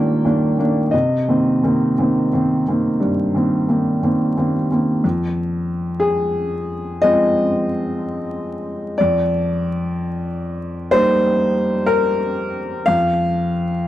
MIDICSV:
0, 0, Header, 1, 2, 480
1, 0, Start_track
1, 0, Tempo, 1027397
1, 430, Time_signature, 4, 2, 24, 8
1, 2354, Tempo, 998336
1, 3314, Tempo, 967742
1, 5714, Tempo, 991736
1, 6683, End_track
2, 0, Start_track
2, 0, Title_t, "Upright piano"
2, 0, Program_c, 0, 0
2, 0, Control_c, 0, 64, 127
2, 0, Note_on_c, 0, 46, 44
2, 0, Note_on_c, 0, 51, 38
2, 0, Note_on_c, 0, 58, 39
2, 0, Note_on_c, 0, 62, 37
2, 0, Note_on_c, 0, 79, 92
2, 102, Note_off_c, 0, 51, 0
2, 105, Note_off_c, 0, 62, 0
2, 106, Note_off_c, 0, 58, 0
2, 115, Note_on_c, 0, 58, 36
2, 117, Note_on_c, 0, 51, 36
2, 119, Note_on_c, 0, 62, 42
2, 256, Note_off_c, 0, 58, 0
2, 257, Note_off_c, 0, 51, 0
2, 258, Note_off_c, 0, 62, 0
2, 273, Note_on_c, 0, 51, 32
2, 276, Note_on_c, 0, 58, 36
2, 278, Note_on_c, 0, 62, 39
2, 416, Note_off_c, 0, 51, 0
2, 418, Note_off_c, 0, 58, 0
2, 419, Note_off_c, 0, 62, 0
2, 426, Note_on_c, 0, 75, 57
2, 431, Note_off_c, 0, 79, 0
2, 436, Note_on_c, 0, 48, 45
2, 439, Control_c, 0, 64, 0
2, 442, Note_off_c, 0, 46, 0
2, 536, Control_c, 0, 64, 127
2, 590, Note_off_c, 0, 48, 0
2, 600, Note_on_c, 0, 51, 31
2, 603, Note_on_c, 0, 60, 33
2, 605, Note_on_c, 0, 58, 29
2, 743, Note_off_c, 0, 51, 0
2, 744, Note_off_c, 0, 60, 0
2, 745, Note_off_c, 0, 58, 0
2, 763, Note_on_c, 0, 51, 32
2, 765, Note_on_c, 0, 58, 34
2, 771, Note_on_c, 0, 60, 33
2, 905, Note_off_c, 0, 51, 0
2, 906, Note_off_c, 0, 58, 0
2, 909, Note_off_c, 0, 60, 0
2, 926, Note_on_c, 0, 51, 31
2, 930, Note_on_c, 0, 58, 32
2, 932, Note_on_c, 0, 60, 36
2, 1066, Note_off_c, 0, 51, 0
2, 1068, Note_off_c, 0, 58, 0
2, 1069, Note_off_c, 0, 60, 0
2, 1089, Note_on_c, 0, 60, 34
2, 1093, Note_on_c, 0, 51, 30
2, 1093, Note_on_c, 0, 58, 30
2, 1228, Note_off_c, 0, 60, 0
2, 1230, Note_off_c, 0, 51, 0
2, 1230, Note_off_c, 0, 58, 0
2, 1253, Note_on_c, 0, 51, 31
2, 1257, Note_on_c, 0, 60, 33
2, 1259, Note_on_c, 0, 58, 32
2, 1390, Note_off_c, 0, 51, 0
2, 1392, Note_off_c, 0, 60, 0
2, 1393, Note_off_c, 0, 58, 0
2, 1402, Note_on_c, 0, 43, 32
2, 1555, Note_off_c, 0, 43, 0
2, 1563, Note_on_c, 0, 51, 29
2, 1566, Note_on_c, 0, 58, 28
2, 1569, Note_on_c, 0, 60, 32
2, 1704, Note_off_c, 0, 51, 0
2, 1706, Note_off_c, 0, 58, 0
2, 1707, Note_off_c, 0, 60, 0
2, 1721, Note_on_c, 0, 51, 28
2, 1724, Note_on_c, 0, 58, 28
2, 1730, Note_on_c, 0, 60, 28
2, 1864, Note_off_c, 0, 51, 0
2, 1865, Note_off_c, 0, 58, 0
2, 1868, Note_off_c, 0, 60, 0
2, 1882, Note_on_c, 0, 51, 29
2, 1884, Note_on_c, 0, 58, 29
2, 1887, Note_on_c, 0, 60, 32
2, 2024, Note_off_c, 0, 51, 0
2, 2025, Note_off_c, 0, 58, 0
2, 2027, Note_off_c, 0, 60, 0
2, 2044, Note_on_c, 0, 51, 30
2, 2044, Note_on_c, 0, 60, 31
2, 2048, Note_on_c, 0, 58, 27
2, 2116, Note_off_c, 0, 75, 0
2, 2186, Note_off_c, 0, 51, 0
2, 2186, Note_off_c, 0, 60, 0
2, 2188, Note_off_c, 0, 58, 0
2, 2202, Note_on_c, 0, 51, 29
2, 2204, Note_on_c, 0, 58, 29
2, 2205, Note_on_c, 0, 60, 30
2, 2340, Note_off_c, 0, 51, 0
2, 2341, Note_off_c, 0, 58, 0
2, 2342, Note_off_c, 0, 60, 0
2, 2355, Note_on_c, 0, 41, 46
2, 2360, Control_c, 0, 64, 0
2, 2438, Control_c, 0, 64, 127
2, 2814, Note_on_c, 0, 68, 73
2, 3305, Note_on_c, 0, 75, 94
2, 3309, Note_off_c, 0, 68, 0
2, 3310, Note_on_c, 0, 56, 42
2, 3313, Note_on_c, 0, 53, 42
2, 3315, Note_on_c, 0, 60, 48
2, 4258, Note_off_c, 0, 56, 0
2, 4260, Note_off_c, 0, 41, 0
2, 4260, Note_off_c, 0, 53, 0
2, 4260, Note_off_c, 0, 60, 0
2, 4275, Note_off_c, 0, 75, 0
2, 4278, Note_on_c, 0, 74, 76
2, 4287, Control_c, 0, 64, 0
2, 4292, Note_on_c, 0, 41, 58
2, 4366, Control_c, 0, 64, 127
2, 5237, Note_on_c, 0, 72, 102
2, 5239, Note_off_c, 0, 74, 0
2, 5244, Note_on_c, 0, 55, 55
2, 5245, Note_on_c, 0, 58, 51
2, 5246, Note_on_c, 0, 63, 54
2, 5709, Note_on_c, 0, 70, 85
2, 5714, Note_off_c, 0, 72, 0
2, 6182, Note_off_c, 0, 55, 0
2, 6183, Note_off_c, 0, 58, 0
2, 6183, Note_off_c, 0, 63, 0
2, 6186, Note_off_c, 0, 41, 0
2, 6190, Note_on_c, 0, 77, 100
2, 6196, Note_off_c, 0, 70, 0
2, 6198, Note_on_c, 0, 41, 58
2, 6206, Control_c, 0, 64, 0
2, 6279, Control_c, 0, 64, 127
2, 6683, Note_off_c, 0, 41, 0
2, 6683, Note_off_c, 0, 77, 0
2, 6683, End_track
0, 0, End_of_file